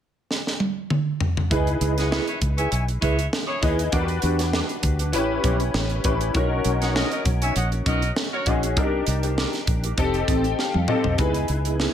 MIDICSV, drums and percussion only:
0, 0, Header, 1, 2, 480
1, 0, Start_track
1, 0, Tempo, 605449
1, 1194, Time_signature, 4, 2, 24, 8
1, 9462, End_track
2, 0, Start_track
2, 0, Title_t, "Drums"
2, 243, Note_on_c, 9, 38, 57
2, 322, Note_off_c, 9, 38, 0
2, 374, Note_on_c, 9, 38, 50
2, 453, Note_off_c, 9, 38, 0
2, 476, Note_on_c, 9, 48, 72
2, 556, Note_off_c, 9, 48, 0
2, 717, Note_on_c, 9, 47, 84
2, 796, Note_off_c, 9, 47, 0
2, 955, Note_on_c, 9, 43, 97
2, 1035, Note_off_c, 9, 43, 0
2, 1088, Note_on_c, 9, 43, 94
2, 1168, Note_off_c, 9, 43, 0
2, 1197, Note_on_c, 9, 36, 103
2, 1198, Note_on_c, 9, 42, 76
2, 1277, Note_off_c, 9, 36, 0
2, 1277, Note_off_c, 9, 42, 0
2, 1325, Note_on_c, 9, 42, 33
2, 1404, Note_off_c, 9, 42, 0
2, 1436, Note_on_c, 9, 42, 68
2, 1515, Note_off_c, 9, 42, 0
2, 1567, Note_on_c, 9, 42, 49
2, 1575, Note_on_c, 9, 38, 33
2, 1647, Note_off_c, 9, 42, 0
2, 1654, Note_off_c, 9, 38, 0
2, 1682, Note_on_c, 9, 38, 98
2, 1762, Note_off_c, 9, 38, 0
2, 1803, Note_on_c, 9, 42, 39
2, 1882, Note_off_c, 9, 42, 0
2, 1914, Note_on_c, 9, 42, 67
2, 1916, Note_on_c, 9, 36, 90
2, 1993, Note_off_c, 9, 42, 0
2, 1995, Note_off_c, 9, 36, 0
2, 2046, Note_on_c, 9, 42, 51
2, 2125, Note_off_c, 9, 42, 0
2, 2155, Note_on_c, 9, 42, 78
2, 2235, Note_off_c, 9, 42, 0
2, 2287, Note_on_c, 9, 42, 35
2, 2366, Note_off_c, 9, 42, 0
2, 2396, Note_on_c, 9, 36, 88
2, 2398, Note_on_c, 9, 42, 76
2, 2475, Note_off_c, 9, 36, 0
2, 2477, Note_off_c, 9, 42, 0
2, 2527, Note_on_c, 9, 42, 41
2, 2606, Note_off_c, 9, 42, 0
2, 2640, Note_on_c, 9, 38, 105
2, 2719, Note_off_c, 9, 38, 0
2, 2874, Note_on_c, 9, 42, 75
2, 2875, Note_on_c, 9, 36, 88
2, 2954, Note_off_c, 9, 42, 0
2, 2955, Note_off_c, 9, 36, 0
2, 3006, Note_on_c, 9, 42, 52
2, 3085, Note_off_c, 9, 42, 0
2, 3111, Note_on_c, 9, 42, 71
2, 3113, Note_on_c, 9, 36, 96
2, 3190, Note_off_c, 9, 42, 0
2, 3192, Note_off_c, 9, 36, 0
2, 3237, Note_on_c, 9, 42, 35
2, 3316, Note_off_c, 9, 42, 0
2, 3345, Note_on_c, 9, 42, 67
2, 3424, Note_off_c, 9, 42, 0
2, 3481, Note_on_c, 9, 42, 51
2, 3488, Note_on_c, 9, 38, 34
2, 3560, Note_off_c, 9, 42, 0
2, 3568, Note_off_c, 9, 38, 0
2, 3595, Note_on_c, 9, 38, 110
2, 3674, Note_off_c, 9, 38, 0
2, 3720, Note_on_c, 9, 42, 35
2, 3799, Note_off_c, 9, 42, 0
2, 3829, Note_on_c, 9, 42, 69
2, 3832, Note_on_c, 9, 36, 83
2, 3908, Note_off_c, 9, 42, 0
2, 3911, Note_off_c, 9, 36, 0
2, 3958, Note_on_c, 9, 42, 49
2, 4038, Note_off_c, 9, 42, 0
2, 4070, Note_on_c, 9, 42, 86
2, 4149, Note_off_c, 9, 42, 0
2, 4311, Note_on_c, 9, 42, 79
2, 4312, Note_on_c, 9, 36, 84
2, 4390, Note_off_c, 9, 42, 0
2, 4391, Note_off_c, 9, 36, 0
2, 4439, Note_on_c, 9, 42, 43
2, 4518, Note_off_c, 9, 42, 0
2, 4553, Note_on_c, 9, 38, 100
2, 4632, Note_off_c, 9, 38, 0
2, 4674, Note_on_c, 9, 42, 30
2, 4753, Note_off_c, 9, 42, 0
2, 4789, Note_on_c, 9, 42, 70
2, 4793, Note_on_c, 9, 36, 88
2, 4868, Note_off_c, 9, 42, 0
2, 4872, Note_off_c, 9, 36, 0
2, 4921, Note_on_c, 9, 42, 50
2, 5000, Note_off_c, 9, 42, 0
2, 5030, Note_on_c, 9, 42, 73
2, 5032, Note_on_c, 9, 36, 100
2, 5110, Note_off_c, 9, 42, 0
2, 5111, Note_off_c, 9, 36, 0
2, 5268, Note_on_c, 9, 42, 70
2, 5348, Note_off_c, 9, 42, 0
2, 5404, Note_on_c, 9, 42, 49
2, 5411, Note_on_c, 9, 38, 33
2, 5484, Note_off_c, 9, 42, 0
2, 5491, Note_off_c, 9, 38, 0
2, 5517, Note_on_c, 9, 38, 107
2, 5596, Note_off_c, 9, 38, 0
2, 5641, Note_on_c, 9, 42, 35
2, 5720, Note_off_c, 9, 42, 0
2, 5751, Note_on_c, 9, 42, 68
2, 5752, Note_on_c, 9, 36, 85
2, 5830, Note_off_c, 9, 42, 0
2, 5832, Note_off_c, 9, 36, 0
2, 5881, Note_on_c, 9, 42, 50
2, 5960, Note_off_c, 9, 42, 0
2, 5991, Note_on_c, 9, 42, 78
2, 6071, Note_off_c, 9, 42, 0
2, 6120, Note_on_c, 9, 42, 34
2, 6200, Note_off_c, 9, 42, 0
2, 6232, Note_on_c, 9, 36, 90
2, 6233, Note_on_c, 9, 42, 75
2, 6312, Note_off_c, 9, 36, 0
2, 6312, Note_off_c, 9, 42, 0
2, 6361, Note_on_c, 9, 42, 39
2, 6440, Note_off_c, 9, 42, 0
2, 6473, Note_on_c, 9, 38, 95
2, 6552, Note_off_c, 9, 38, 0
2, 6707, Note_on_c, 9, 42, 75
2, 6712, Note_on_c, 9, 36, 82
2, 6787, Note_off_c, 9, 42, 0
2, 6792, Note_off_c, 9, 36, 0
2, 6843, Note_on_c, 9, 42, 55
2, 6922, Note_off_c, 9, 42, 0
2, 6950, Note_on_c, 9, 42, 72
2, 6952, Note_on_c, 9, 36, 104
2, 7030, Note_off_c, 9, 42, 0
2, 7031, Note_off_c, 9, 36, 0
2, 7187, Note_on_c, 9, 42, 74
2, 7266, Note_off_c, 9, 42, 0
2, 7319, Note_on_c, 9, 42, 48
2, 7398, Note_off_c, 9, 42, 0
2, 7436, Note_on_c, 9, 38, 100
2, 7515, Note_off_c, 9, 38, 0
2, 7556, Note_on_c, 9, 42, 33
2, 7562, Note_on_c, 9, 38, 31
2, 7635, Note_off_c, 9, 42, 0
2, 7641, Note_off_c, 9, 38, 0
2, 7669, Note_on_c, 9, 42, 69
2, 7670, Note_on_c, 9, 36, 88
2, 7748, Note_off_c, 9, 42, 0
2, 7750, Note_off_c, 9, 36, 0
2, 7798, Note_on_c, 9, 42, 51
2, 7877, Note_off_c, 9, 42, 0
2, 7909, Note_on_c, 9, 42, 80
2, 7910, Note_on_c, 9, 36, 102
2, 7988, Note_off_c, 9, 42, 0
2, 7989, Note_off_c, 9, 36, 0
2, 8038, Note_on_c, 9, 42, 33
2, 8117, Note_off_c, 9, 42, 0
2, 8150, Note_on_c, 9, 36, 85
2, 8151, Note_on_c, 9, 42, 82
2, 8229, Note_off_c, 9, 36, 0
2, 8231, Note_off_c, 9, 42, 0
2, 8279, Note_on_c, 9, 42, 38
2, 8358, Note_off_c, 9, 42, 0
2, 8394, Note_on_c, 9, 38, 55
2, 8473, Note_off_c, 9, 38, 0
2, 8517, Note_on_c, 9, 48, 51
2, 8596, Note_off_c, 9, 48, 0
2, 8625, Note_on_c, 9, 45, 83
2, 8704, Note_off_c, 9, 45, 0
2, 8754, Note_on_c, 9, 43, 83
2, 8833, Note_off_c, 9, 43, 0
2, 8865, Note_on_c, 9, 42, 68
2, 8868, Note_on_c, 9, 36, 97
2, 8945, Note_off_c, 9, 42, 0
2, 8948, Note_off_c, 9, 36, 0
2, 8994, Note_on_c, 9, 42, 50
2, 9073, Note_off_c, 9, 42, 0
2, 9102, Note_on_c, 9, 42, 64
2, 9182, Note_off_c, 9, 42, 0
2, 9237, Note_on_c, 9, 42, 49
2, 9316, Note_off_c, 9, 42, 0
2, 9353, Note_on_c, 9, 38, 91
2, 9432, Note_off_c, 9, 38, 0
2, 9462, End_track
0, 0, End_of_file